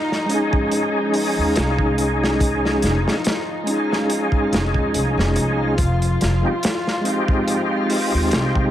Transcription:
Already playing: F3 D#4 F4
0.12 snare
0.26 G#3 C#4, closed hi-hat
0.31 D#4 G#4
0.53 kick
0.72 closed hi-hat
1.14 open hi-hat
1.38 D#2
1.56 C2, snare, closed hi-hat
1.79 kick
1.98 closed hi-hat
2.24 snare
2.40 kick, closed hi-hat
2.65 snare
2.82 F1, snare, closed hi-hat
3.04 G#3 C#4 D#4, snare
3.08 G#4
3.24 snare, closed hi-hat
3.64 G#3 C#4, closed hi-hat
3.69 D#4 G#4
3.93 snare
4.10 closed hi-hat
4.32 kick
4.52 F1, snare, closed hi-hat
4.74 D#2, kick
4.94 C2, closed hi-hat
5.17 F1, snare
5.36 C2, closed hi-hat
5.78 F1 F4, kick, closed hi-hat
6.02 closed hi-hat
6.21 F1, snare, closed hi-hat
6.42 G#3 C4 D#4
6.46 G4
6.63 snare, closed hi-hat
6.87 snare
7.01 G#3 C4
7.05 D#4, closed hi-hat
7.10 G4
7.28 kick
7.48 closed hi-hat
7.90 open hi-hat
8.14 D#2
8.31 C2, snare, closed hi-hat
8.55 kick

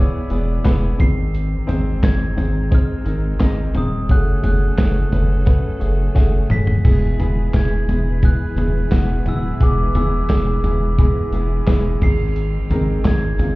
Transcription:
Already playing: B2 E3 B3 E4 G#4 B4 C#5 D5 E6
0.30 E1 B3 E4 G#4 D5, closed hi-hat, tambourine
0.64 E1 B3 E4 G#4 B4, kick, snare, clap, closed hi-hat, tambourine
0.98 G#1 G#2 D#3 G#3 C4 D#4 G#4 C5 C7, kick, closed hi-hat, floor tom
1.34 closed hi-hat, tambourine
1.67 G#1 C4 D#4 G#4 C5, closed hi-hat, floor tom, tambourine
2.03 G#1 C4 D#4 G#4 C5 G#6, kick, snare, clap, closed hi-hat, tambourine
2.36 G#1 C4 D#4 G#4 C5, closed hi-hat, floor tom, tambourine
2.71 C4 D#4 G#4 C5 F6, kick, closed hi-hat, tambourine
3.05 G#1 C4 D#4 G#4 A#4, closed hi-hat, tambourine
3.40 G#1 C4 D#4 G#4 D#5, kick, snare, clap, closed hi-hat, tambourine
3.74 D#1 C4 D#4 G#4 C5 D#6, closed hi-hat, floor tom
4.09 F#1 C#3 F#3 A3 C#4 F#4 G#4 A4 F#6, kick, closed hi-hat, tambourine
4.43 F#1 A3 C#4 F#4 G#4 F#6, closed hi-hat, floor tom, tambourine
4.77 F#1 A3 C#4 F#4 G#4, kick, snare, clap, closed hi-hat, tambourine
5.11 F#1 A3 C#4 F#4 B4, closed hi-hat, floor tom, tambourine
5.45 A3 C#4 F#4 B4, kick, closed hi-hat, tambourine
5.80 F#1 A3 C#4 F#4 G#4, closed hi-hat, tambourine
6.15 F#1 A3 C#4 F#4 G#4, kick, snare, tambourine
6.49 D1 A3 C#4 F#4 A4 B6, mid tom, tambourine
6.67 floor tom
6.83 E1 B2 E3 G#3 B3 E4 G#4 B4, kick, tambourine, splash
7.19 E1 G#3 B3 E4 G#4, closed hi-hat, floor tom, tambourine
7.53 E1 G#3 B3 E4 G#4 G#6, kick, snare, clap, closed hi-hat, tambourine
7.87 E1 G#3 B3 E4 G#4, closed hi-hat, floor tom, tambourine
8.22 G#3 B3 E4 G#4 F#6, kick, closed hi-hat, tambourine
8.55 E1 G#3 B3 E4 G#4, closed hi-hat, floor tom, tambourine
8.91 E1 G#3 B3 E4 F#4, kick, snare, clap, closed hi-hat, tambourine
9.25 D1 G#3 B3 E4 F#4 E6, closed hi-hat, floor tom, tambourine
9.60 E1 B2 G#3 B3 E4 G#4 D6, kick, closed hi-hat, tambourine
9.94 E1 G#3 B3 E4 G#4 E6, closed hi-hat, floor tom, tambourine
10.29 E1 G#3 B3 E4 G#4, kick, snare, clap, closed hi-hat, tambourine
10.63 E1 G#3 B3 E4 G#4, closed hi-hat, floor tom, tambourine
10.98 G#3 B3 E4 G#4, kick, closed hi-hat, tambourine
11.32 E1 G#3 B3 E4 G#4, closed hi-hat, tambourine
11.67 E1 G#3 B3 E4 G#4, kick, snare, clap, closed hi-hat, tambourine
12.01 G#1 G#2 D#3 G#3 C4 D#4 G#4 C7, kick, floor tom, tambourine, crash
12.36 closed hi-hat, tambourine
12.70 G#1 G#3 C4 D#4 A#4, closed hi-hat, floor tom, tambourine
13.03 G#1 G#3 C4 D#4 G#4 G#6, kick, snare, clap, closed hi-hat, tambourine
13.38 G#1 G#3 C4 D#4 F4, closed hi-hat, floor tom, tambourine

